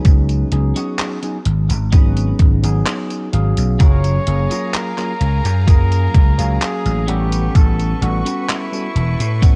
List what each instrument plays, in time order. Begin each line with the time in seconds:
Already playing: tine electric piano F#3 B3 C#4 D#4 G#4, clean electric guitar C#4 D#4 F#4 B4
0.05 slap bass C#2, kick, closed hi-hat, tambourine
0.29 closed hi-hat, tambourine
0.51 slap bass C#2, tine electric piano F#3 B3 C#4 D#4 G#4, closed hi-hat
0.76 clean electric guitar C#4 D#4 F#4 G#4, closed hi-hat, tambourine
0.99 clap, closed hi-hat, tambourine
1.22 tine electric piano F#3 B3 C#4 D#4 G#4, closed hi-hat, tambourine
1.45 slap bass G#1, closed hi-hat
1.69 slap bass G#1, muted clean electric guitar stroke, closed hi-hat, tambourine
1.92 tine electric piano F#3 B3 C#4 D#4 G#4, clean electric guitar C#4 D#4 F#4 B4, kick, closed hi-hat, tambourine
2.17 closed hi-hat, tambourine
2.39 slap bass G#1, kick, closed hi-hat
2.63 slap bass G#1, tine electric piano F#3 B3 C#4 D#4 G#4, closed hi-hat, tambourine
2.86 clap, closed hi-hat, tambourine
3.10 closed hi-hat, tambourine
3.32 slap bass G#1, tine electric piano F#3 C#4 G#4 F5, muted clean electric guitar stroke, closed hi-hat
3.57 slap bass B1, closed hi-hat, tambourine
3.79 slap bass F#1, clean electric guitar F4 F#4 G#4 A#4, string section G#4 F5 A#5, flugelhorn C#5, kick, closed hi-hat, tambourine
4.04 closed hi-hat, tambourine
4.26 slap bass F#1, tine electric piano F#3 A#3 C#4 G#4 F5, closed hi-hat
4.50 clean electric guitar F4 F#4 G#4 A#4, closed hi-hat, tambourine
4.74 flugelhorn A#4, clap, closed hi-hat, tambourine
4.97 tine electric piano F#3 A#3 C#4 F4 G#4, clap, tambourine
5.21 slap bass C#2, closed hi-hat
5.44 slap bass F#2, muted clean electric guitar stroke, closed hi-hat, tambourine
5.67 tine electric piano F#3 A#3 C#4 G#4 F5, clean electric guitar F4 F#4 G#4 A#4, flugelhorn A#4, kick, closed hi-hat, tambourine
5.92 closed hi-hat, tambourine
6.14 slap bass C#2, kick, closed hi-hat
6.38 slap bass C#2, tine electric piano F#3 A#3 C#4 G#4 F5, closed hi-hat, tambourine
6.61 flugelhorn G#4, clap, closed hi-hat, tambourine
6.85 slap bass A1, closed hi-hat, tambourine
7.07 tine electric piano G3 B3 C#4 A4 F#5, clean electric guitar C#4 F#4 G4 B4, flugelhorn G4, string section B4 C#6, closed hi-hat
7.32 closed hi-hat, tambourine
7.55 slap bass A1, flugelhorn A4, kick, closed hi-hat, tambourine
7.79 closed hi-hat, tambourine
8.01 slap bass A1, tine electric piano G3 B3 C#4 A4 F#5, flugelhorn F#4, closed hi-hat
8.25 clean electric guitar C#4 F#4 G4 B4, closed hi-hat, tambourine
8.49 flugelhorn E4, clap, closed hi-hat, tambourine
8.72 tine electric piano G3 B3 C#4 F#4 A4, tambourine
8.95 slap bass E1, string section A5, closed hi-hat
9.19 slap bass A2, muted clean electric guitar stroke, closed hi-hat, tambourine
9.42 tine electric piano G3 B3 C#4 A4 F#5, clean electric guitar C#4 F#4 G4 B4, kick, closed hi-hat, tambourine